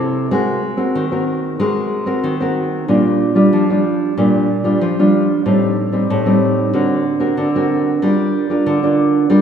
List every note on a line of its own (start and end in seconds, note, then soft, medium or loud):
0.00 0.28 C3 medium
0.00 0.26 C4 medium
0.00 0.27 E4 medium
0.00 0.27 A4 medium
0.31 0.92 G#3 medium
0.31 0.61 C4 medium
0.31 0.61 F#4 medium
0.31 0.62 A#4 medium
0.77 1.05 C4 medium
0.77 1.05 F#4 medium
0.77 1.06 A#4 medium
0.95 1.56 D#3 medium
1.11 1.55 C4 medium
1.11 1.55 F#4 medium
1.11 1.55 A#4 medium
1.60 2.21 G#3 medium
1.60 2.03 C4 medium
1.60 2.03 F#4 medium
1.60 2.03 A#4 medium
2.06 2.34 C4 medium
2.06 2.34 F#4 medium
2.06 2.34 A#4 medium
2.24 2.85 D#3 medium
2.40 2.83 C4 medium
2.40 2.83 F#4 medium
2.40 2.84 A#4 medium
2.88 3.49 A#2 medium
2.88 3.31 G3 medium
2.88 3.32 D4 medium
2.88 3.32 F4 medium
3.35 3.63 G3 medium
3.35 3.63 D4 medium
3.35 3.63 F4 medium
3.53 4.14 F3 medium
3.69 4.12 G3 medium
3.69 4.12 D4 medium
3.69 4.12 F4 medium
4.17 4.78 A#2 medium
4.17 4.47 G3 medium
4.17 4.47 D4 medium
4.17 4.47 F4 medium
4.64 4.91 G3 medium
4.64 4.91 D4 medium
4.64 4.92 F4 medium
4.81 5.42 F3 medium
4.99 5.41 G3 medium
4.99 5.41 D4 medium
4.99 5.41 F4 medium
5.46 6.06 A2 medium
5.46 5.75 G3 medium
5.46 5.76 C4 medium
5.46 5.76 D#4 medium
5.92 6.20 G3 medium
5.92 6.20 C4 medium
5.92 6.20 D#4 medium
6.10 6.71 A2 medium
6.26 6.69 G3 medium
6.26 6.69 C4 medium
6.26 6.69 D#4 medium
6.73 7.34 D3 medium
6.73 7.04 C4 medium
6.73 7.04 F#4 medium
6.73 7.04 A#4 medium
7.20 7.48 C4 medium
7.20 7.48 F#4 medium
7.20 7.48 A#4 medium
7.37 7.98 D3 medium
7.55 7.97 C4 medium
7.55 7.98 F#4 medium
7.55 7.98 A#4 medium
8.02 8.63 G3 medium
8.02 8.45 D4 soft
8.02 8.45 F4 medium
8.02 8.45 A#4 medium
8.50 8.77 D4 medium
8.50 8.77 F4 medium
8.50 8.77 A#4 medium
8.66 9.27 D3 medium
8.83 9.26 D4 medium
8.83 9.26 F4 medium
8.83 9.26 A#4 medium
9.30 9.41 G3 medium
9.30 9.41 D4 medium
9.30 9.41 F4 medium
9.30 9.41 A#4 medium